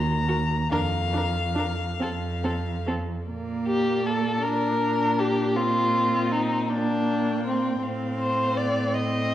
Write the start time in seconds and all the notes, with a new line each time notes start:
Already playing: D#2 A#5
0.28 F#4 A#4
0.71 F2 D4 A#4 F5
1.13 D4
1.17 A#4
1.55 D4 A#4
2.00 F2 C4 A4
2.44 C4 A4
2.87 C4 A4
3.27 A#2 A#3 D5
3.67 G4
4.06 A4
4.42 D4 A#4
5.19 G4
5.55 C4 F4 D#5
6.32 D#4
6.69 A#3 D4 G5
7.47 C4
7.82 A2 C4 F5
8.20 C5
8.57 D5
8.94 D#5